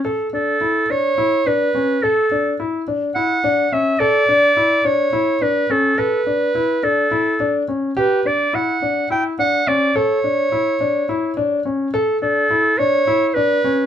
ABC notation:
X:1
M:7/8
L:1/16
Q:1/4=106
K:Bm
V:1 name="Clarinet"
z2 A4 c4 B4 | A4 z4 f4 e2 | d6 c4 B2 A2 | B6 A6 z2 |
B2 d2 f4 g2 f2 d2 | c12 z2 | z2 A4 c3- c/2 c/2 B4 |]
V:2 name="Grand piano"
A2 D2 E2 D2 E2 D2 C2 | A2 D2 E2 D2 E2 D2 C2 | A2 D2 E2 D2 E2 D2 C2 | A2 D2 E2 D2 E2 D2 C2 |
G2 D2 E2 D2 E2 D2 C2 | A2 D2 E2 D2 E2 D2 C2 | A2 D2 E2 D2 E2 D2 C2 |]